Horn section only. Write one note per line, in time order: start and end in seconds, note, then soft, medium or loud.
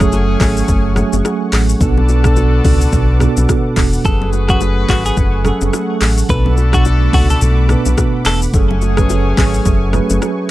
0.00 1.49 A3 medium
0.00 1.49 C#4 medium
0.00 1.49 G#4 loud
1.81 3.73 D4 medium
1.81 3.73 F#4 medium
1.81 3.73 A4 loud
4.05 5.98 F#4 medium
4.05 5.98 G#4 medium
4.05 5.98 B4 loud
6.30 8.22 D4 medium
6.30 8.22 F#4 medium
6.30 8.22 A4 loud
8.54 10.46 A3 medium
8.54 10.46 C#4 loud
8.54 10.46 G#4 loud